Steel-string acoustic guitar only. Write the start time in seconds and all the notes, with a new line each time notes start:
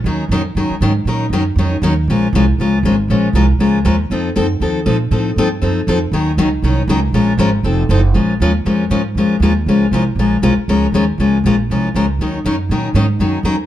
0.06 D#3 F#3 C#4 D#4 A#4
0.31 D#3 F#3 C#4 D#4 A#4
0.57 D#3 F#3 C#4 D#4 A#4
0.82 D#3 F#3 C#4 D#4 A#4
1.07 D#3 F#3 C#4 D#4 A#4
1.33 D#3 F#3 C#4 D#4 A#4
1.58 D#3 F#3 C#4 D#4 A#4
1.83 D#3 F#3 C#4 D#4 A#4
2.10 F3 G#3 C#4 F4 A#4
2.35 F3 G#3 C#4 F4 A#4
2.60 F3 G#3 C#4 F4 A#4
2.85 F3 G#3 C#4 F4 A#4
3.10 F3 G#3 C#4 F4 A#4
3.35 F3 G#3 C#4 F4 A#4
3.60 F3 G#3 C#4 F4 A#4
3.85 F3 G#3 C#4 F4 A#4
4.11 F3 C4 D#4 A4
4.36 F3 C4 D#4 A4
4.62 F3 C4 D#4 A4
4.86 F3 C4 D#4 A4
5.11 F3 C4 D#4 A4
5.38 F3 C4 D#4 A4
5.62 F3 C4 D#4 A4
5.88 F3 C4 D#4 A4
6.13 D#3 F#3 C#4 D#4 A#4
6.38 D#3 F#3 C#4 D#4 A#4
6.64 D#3 F#3 C#4 D#4 A#4
6.89 D#3 F#3 C#4 D#4 A#4
7.14 F3 G#3 C#4 F4 A#4
7.39 F3 G#3 C#4 F4 A#4
7.64 F3 C4 D#4 A4
7.90 F3 C4 D#4 A4
8.14 F3 G#3 C#4 F4 A#4
8.42 F3 G#3 C#4 F4 A#4
8.66 F3 G#3 C#4 F4 A#4
8.91 F3 G#3 C#4 F4 A#4
9.17 F3 G#3 C#4 F4 A#4
9.42 F3 G#3 C#4 F4 A#4
9.68 F3 G#3 C#4 F4 A#4
9.93 F3 G#3 C#4 F4 A#4
10.19 F3 G#3 C#4 F4 A#4
10.43 F3 G#3 C#4 F4 A#4
10.69 F3 G#3 C#4 F4 A#4
10.94 F3 G#3 C#4 F4 A#4
11.20 F3 G#3 C#4 F4 A#4
11.46 F3 G#3 C#4 F4 A#4
11.71 F3 G#3 C#4 F4 A#4
11.95 F3 G#3 C#4 F4 A#4
12.21 D#3 F#3 C#4 D#4 A#4
12.45 D#3 F#3 C#4 D#4 A#4
12.71 D#3 F#3 C#4 D#4 A#4
12.95 D#3 F#3 C#4 D#4 A#4
13.20 D#3 F#3 C#4 D#4 A#4
13.45 D#3 F#3 C#4 D#4 A#4